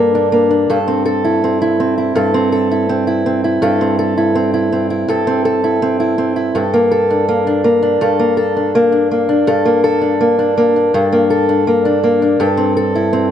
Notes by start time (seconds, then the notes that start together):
Already playing: G2 A#3 D4 A4
0.15 D4
0.32 A#3
0.51 D4
0.70 G2 A4
0.88 C4
1.06 A4
1.25 E4
1.44 C4
1.62 E4
1.80 C4
1.98 E4
2.15 G2 A4
2.34 C4
2.52 A4
2.71 E4
2.89 C4
3.07 E4
3.26 C4
3.44 E4
3.62 G2 A4
3.81 C4
3.99 A4
4.17 E4
4.35 C4
4.54 E4
4.72 C4
4.90 E4
5.08 G2 A4
5.27 C4
5.45 A4
5.64 E4
5.82 C4
6.00 E4
6.18 C4
6.36 E4
6.55 G2 A4
6.74 A#3
6.91 A4
7.10 D4
7.29 A#3
7.47 D4
7.64 A#3
7.83 D4
8.01 G2 A4
8.19 A#3
8.37 A4
8.56 D4
8.75 A#3
8.92 D4
9.11 A#3
9.29 D4
9.47 G2 A4
9.65 A#3
9.84 A4
10.01 D4
10.21 A#3
10.39 D4
10.58 A#3
10.76 D4
10.94 G2 A4
11.12 A#3
11.30 A4
11.49 D4
11.67 A#3
11.85 D4
12.04 A#3
12.22 D4
12.40 G2 A4
12.57 C4
12.77 A4
12.95 E4
13.13 C4